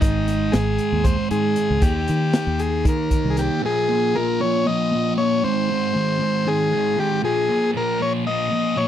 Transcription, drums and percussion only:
0.02 kick, closed hi-hat
0.28 snare, closed hi-hat
0.53 snare, closed hi-hat
0.78 closed hi-hat
1.04 kick, closed hi-hat
1.31 closed hi-hat
1.56 closed hi-hat
1.82 kick, closed hi-hat
2.08 closed hi-hat
2.33 snare, closed hi-hat
2.59 closed hi-hat
2.85 kick, closed hi-hat
3.11 kick, closed hi-hat
3.37 snare, closed hi-hat

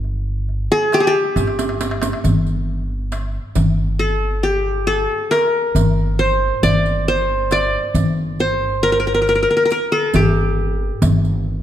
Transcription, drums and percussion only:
0.04 darbuka ka
0.49 darbuka ka
0.92 riq, darbuka tek
1.36 riq, darbuka tek
1.47 darbuka ka
1.59 riq, darbuka tek
1.69 darbuka ka
1.81 riq, darbuka tek
1.91 darbuka ka
2.02 riq, darbuka tek
2.13 darbuka ka
2.24 riq, darbuka dum
2.47 riq
3.12 riq, darbuka tek
3.55 riq, darbuka dum
4.00 riq
4.44 riq
4.88 riq
5.32 riq, darbuka tek
5.76 riq, darbuka dum
6.63 riq, darbuka dum
6.86 riq
7.51 riq, darbuka tek
7.95 riq, darbuka dum
8.39 riq
8.83 riq
9.27 riq
9.70 riq
10.14 riq, darbuka dum
11.02 riq, darbuka dum
11.25 riq

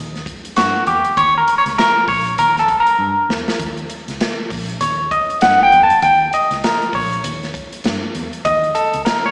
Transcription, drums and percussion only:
0.15 snare, closed hi-hat
0.26 kick, closed hi-hat
0.45 closed hi-hat
0.56 snare, closed hi-hat
0.87 closed hi-hat
1.05 closed hi-hat
1.17 kick, closed hi-hat
1.48 closed hi-hat
1.66 snare, closed hi-hat
1.79 snare, closed hi-hat
2.08 kick, open hi-hat
2.27 closed hi-hat
2.38 closed hi-hat
2.57 snare, closed hi-hat
2.68 kick, closed hi-hat
2.87 closed hi-hat
3.30 snare
3.48 snare
3.60 kick, closed hi-hat
3.77 closed hi-hat
3.90 closed hi-hat
4.08 snare, closed hi-hat
4.21 snare, closed hi-hat
4.50 kick, open hi-hat
4.69 closed hi-hat
4.81 closed hi-hat
5.11 kick, closed hi-hat
5.30 closed hi-hat
5.41 snare, closed hi-hat
5.72 closed hi-hat
5.90 closed hi-hat
6.02 kick, closed hi-hat
6.33 closed hi-hat
6.51 snare, closed hi-hat
6.64 snare, closed hi-hat
6.82 closed hi-hat
6.93 kick, open hi-hat
7.12 closed hi-hat
7.24 closed hi-hat
7.43 snare, closed hi-hat
7.54 kick, closed hi-hat
7.72 closed hi-hat
7.84 snare, closed hi-hat
8.15 closed hi-hat
8.33 closed hi-hat
8.45 kick, closed hi-hat
8.64 closed hi-hat
8.75 closed hi-hat
8.93 closed hi-hat
9.06 snare, closed hi-hat

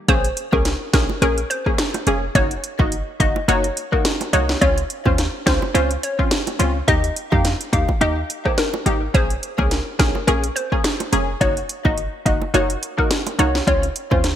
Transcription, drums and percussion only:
0.08 kick, closed hi-hat
0.24 closed hi-hat
0.37 closed hi-hat
0.53 kick, high bongo
0.65 snare, closed hi-hat
0.94 kick, snare, closed hi-hat
1.09 high bongo
1.22 closed hi-hat, high bongo
1.38 closed hi-hat
1.51 closed hi-hat
1.66 kick
1.78 snare, closed hi-hat
1.94 closed hi-hat, high bongo
2.07 closed hi-hat, low bongo
2.35 kick, closed hi-hat
2.51 closed hi-hat
2.64 closed hi-hat
2.79 kick, high bongo
2.92 closed hi-hat
3.20 kick, closed hi-hat
3.36 high bongo
3.49 closed hi-hat, high bongo
3.64 closed hi-hat
3.77 closed hi-hat
3.93 kick
4.05 snare, closed hi-hat
4.21 closed hi-hat, high bongo
4.33 closed hi-hat, low bongo
4.49 snare
4.62 kick, closed hi-hat
4.78 closed hi-hat
4.90 closed hi-hat
5.05 kick, high bongo
5.18 snare, closed hi-hat
5.47 kick, snare, closed hi-hat
5.62 high bongo
5.75 closed hi-hat, high bongo
5.91 closed hi-hat
6.03 closed hi-hat
6.19 kick
6.31 snare, closed hi-hat
6.47 closed hi-hat, high bongo
6.60 closed hi-hat, low bongo
6.88 kick, closed hi-hat
7.04 closed hi-hat
7.16 closed hi-hat
7.32 kick, high bongo
7.45 snare, closed hi-hat
7.61 closed hi-hat
7.73 kick, closed hi-hat
7.89 kick, high bongo
8.01 closed hi-hat, high bongo
8.30 closed hi-hat
8.45 kick, cross-stick
8.58 snare, closed hi-hat
8.74 high bongo
8.86 closed hi-hat, low bongo
9.14 kick, closed hi-hat
9.30 closed hi-hat
9.43 closed hi-hat
9.58 kick, high bongo
9.71 snare, closed hi-hat
10.00 kick, snare, closed hi-hat
10.15 high bongo
10.28 closed hi-hat, high bongo
10.44 closed hi-hat
10.56 closed hi-hat
10.72 kick
10.84 snare, closed hi-hat
11.00 closed hi-hat, high bongo
11.13 closed hi-hat, low bongo
11.41 kick, closed hi-hat
11.57 closed hi-hat
11.69 closed hi-hat
11.85 kick, high bongo
11.98 closed hi-hat
12.26 kick, closed hi-hat
12.42 high bongo
12.54 closed hi-hat, high bongo
12.70 closed hi-hat
12.83 closed hi-hat
12.99 kick
13.11 snare, closed hi-hat
13.27 closed hi-hat, high bongo
13.39 closed hi-hat, low bongo
13.55 snare
13.67 kick, closed hi-hat
13.83 closed hi-hat
13.96 closed hi-hat
14.11 kick, high bongo
14.24 snare, closed hi-hat

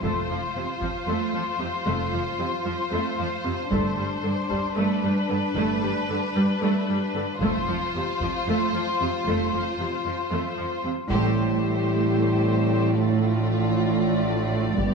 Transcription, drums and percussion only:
0.03 taiko
0.82 taiko
3.71 taiko
4.51 taiko
7.41 taiko
8.20 taiko
11.10 taiko
14.79 taiko

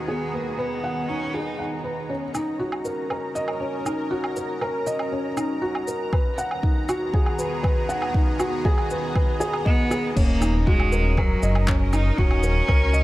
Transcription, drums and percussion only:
2.35 low woodblock, shaker
2.72 low woodblock
2.85 shaker
3.10 low woodblock
3.35 shaker
3.48 low woodblock
3.86 low woodblock, shaker
4.24 low woodblock
4.36 shaker
4.61 low woodblock
4.87 shaker
4.99 low woodblock
5.37 low woodblock, shaker
5.75 low woodblock
5.88 shaker
6.13 kick, low woodblock
6.38 shaker
6.51 low woodblock
6.63 kick
6.89 low woodblock, shaker
7.14 kick
7.26 low woodblock
7.39 shaker
7.64 kick, low woodblock
7.89 shaker
8.02 low woodblock
8.14 kick
8.40 low woodblock, shaker
8.65 kick
8.78 low woodblock
8.90 shaker
9.16 kick, low woodblock
9.41 shaker
9.53 low woodblock
9.66 kick
9.91 low woodblock, shaker
10.17 kick, crash
10.42 low woodblock, shaker
10.67 kick
10.80 low woodblock
10.92 shaker
11.17 kick, low woodblock
11.43 shaker
11.55 low woodblock
11.68 kick, clap
11.93 low woodblock, shaker
12.18 kick
12.31 low woodblock
12.43 shaker
12.68 kick, low woodblock
12.94 shaker

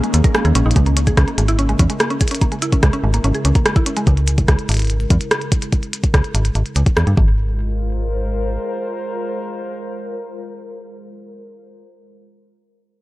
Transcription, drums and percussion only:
0.04 closed hi-hat
0.14 closed hi-hat
0.24 kick, closed hi-hat
0.35 cross-stick, closed hi-hat
0.45 closed hi-hat
0.55 closed hi-hat
0.71 closed hi-hat
0.76 kick, closed hi-hat
0.86 closed hi-hat
0.97 closed hi-hat
1.07 kick, closed hi-hat
1.17 kick, cross-stick, closed hi-hat
1.28 closed hi-hat
1.38 closed hi-hat
1.48 closed hi-hat
1.59 closed hi-hat
1.69 closed hi-hat
1.79 kick, closed hi-hat
1.90 closed hi-hat
2.00 cross-stick, closed hi-hat
2.10 closed hi-hat
2.21 kick, closed hi-hat
2.28 closed hi-hat
2.31 closed hi-hat
2.35 closed hi-hat
2.41 kick, closed hi-hat
2.52 closed hi-hat
2.62 closed hi-hat
2.72 kick, closed hi-hat
2.83 kick, cross-stick, closed hi-hat
2.93 closed hi-hat
3.14 closed hi-hat
3.24 closed hi-hat
3.35 closed hi-hat
3.45 closed hi-hat
3.55 kick, closed hi-hat
3.66 cross-stick, closed hi-hat
3.76 kick, closed hi-hat
3.86 closed hi-hat
3.97 closed hi-hat
4.07 kick, closed hi-hat
4.17 closed hi-hat
4.28 closed hi-hat
4.38 kick, closed hi-hat
4.48 kick, cross-stick, closed hi-hat
4.59 closed hi-hat
4.69 closed hi-hat
4.72 closed hi-hat
4.74 closed hi-hat
4.77 closed hi-hat
4.79 closed hi-hat
4.82 closed hi-hat
4.85 closed hi-hat
4.87 closed hi-hat
4.90 closed hi-hat
5.00 closed hi-hat
5.10 kick, closed hi-hat
5.21 closed hi-hat
5.31 cross-stick, closed hi-hat
5.42 closed hi-hat
5.52 kick, closed hi-hat
5.62 closed hi-hat
5.72 kick, closed hi-hat
5.83 closed hi-hat
5.93 closed hi-hat
6.04 kick, closed hi-hat
6.14 kick, cross-stick, closed hi-hat
6.24 closed hi-hat
6.35 closed hi-hat
6.45 closed hi-hat
6.55 closed hi-hat
6.66 closed hi-hat
6.76 closed hi-hat
6.86 kick, closed hi-hat
6.97 cross-stick, closed hi-hat
7.07 closed hi-hat
7.17 kick

